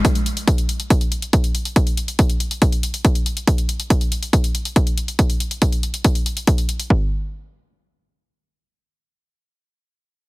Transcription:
\new DrumStaff \with { instrumentName = "Drums" } \drummode { \time 4/4 \tempo 4 = 140 <hh bd>16 hh16 hh16 hh16 <hh bd>16 hh16 hh16 hh16 <hh bd>16 hh16 hh16 hh16 <hh bd>16 hh16 hh16 hh16 | <hh bd>16 hh16 hh16 hh16 <hh bd>16 hh16 hh16 hh16 <hh bd>16 hh16 hh16 hh16 <hh bd>16 hh16 hh16 hh16 | <hh bd>16 hh16 hh16 hh16 <hh bd>16 hh16 hh16 hh16 <hh bd>16 hh16 hh16 hh16 <hh bd>16 hh16 hh16 hh16 | <hh bd>16 hh16 hh16 hh16 <hh bd>16 hh16 hh16 hh16 <hh bd>16 hh16 hh16 hh16 <hh bd>16 hh16 hh16 hh16 |
bd4 r4 r4 r4 | r4 r4 r4 r4 | }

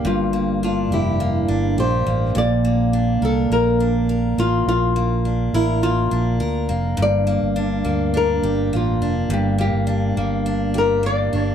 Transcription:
<<
  \new Staff \with { instrumentName = "Nylon-string guitar" } { \time 4/4 \key bes \lydian \tempo 4 = 104 f'4 f'8 e'4 r8 c''4 | d''4. a'8 bes'4 r8 f'8 | f'4. e'8 f'4. r8 | \key g \dorian d''2 bes'4 f'4 |
g'8 g'2 bes'8 d''4 | }
  \new Staff \with { instrumentName = "Steel-string acoustic guitar" } { \time 4/4 \key bes \lydian <g, bes d' g'>8 bes8 d'8 g'8 bes8 d'8 g'8 bes8 | bes,8 bes8 d'8 bes'8 bes8 d'8 bes'8 bes8~ | bes8 bes8 d'8 bes'8 bes8 d'8 bes'8 bes8 | \key g \dorian g,8 bes8 d'8 bes8 d'8 g'8 bes8 d'8 |
g,8 bes8 d'8 bes8 d'8 g'8 bes8 d'8 | }
  \new Staff \with { instrumentName = "Fingered electric bass" } { \clef bass \time 4/4 \key bes \lydian g,,4. f,,4 g,,8 bes,,8 a,,8 | bes,,4. c,8 bes,,4. a,,8 | bes,,4. a,,4 bes,,8 d,8 f,,8 | \key g \dorian g,,8. g,,8. d,4 g,,8 a,,8 f,,8 |
g,,8. g,,8. g,,2 g,,8 | }
>>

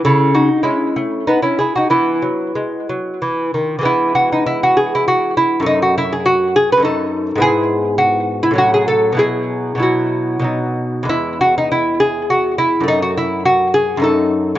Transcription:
<<
  \new Staff \with { instrumentName = "Lute" } { \time 3/4 \key e \major \tempo 4 = 100 <e' a'>8 <dis' fis'>8 <cis' e'>4 <b dis'>16 <cis' e'>16 <e' gis'>16 <dis' fis'>16 | <b e'>2~ <b e'>8 r8 | e'8 fis'16 dis'16 e'16 fis'16 gis'16 e'16 fis'8 e'8 | dis'16 fis'16 e'16 gis'16 fis'8 gis'16 b'16 a'4 |
gis'4 fis'8. e'16 fis'16 gis'16 a'8 | gis'4 fis'4 r4 | e'8 fis'16 dis'16 e'8 gis'8 fis'8 e'8 | dis'16 fis'16 e'8 fis'8 gis'8 a'4 | }
  \new Staff \with { instrumentName = "Lute" } { \clef bass \time 3/4 \key e \major cis4 gis8 a8 r4 | e8 fis8 gis8 fis8 e8 dis8 | <e gis b>2. | <fis, a>2 <fis, a dis'>4 |
<gis, b e'>2 <a, fis cis'>4 | <b, fis e'>4 <b, fis e'>4 <b, fis dis'>4 | <e, gis>2. | <fis, a>2 <fis, a dis'>4 | }
>>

